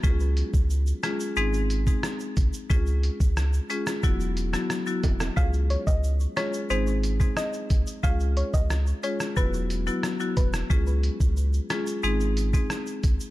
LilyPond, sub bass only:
\new Staff \with { instrumentName = "Sub bass" } { \clef bass \time 4/4 \key des \major \tempo 4 = 90 des,8. des,8. r8 aes,,4 r8 c,16 r16 | des,8. des,8. r8 e,,4 r8 e,,8 | des,8. des,8. r8 aes,,4 r8 c,16 r16 | des,8. des,8. r8 e,,4 r8 e,,8 |
des,8. des,8. r8 aes,,4 r8 c,16 r16 | }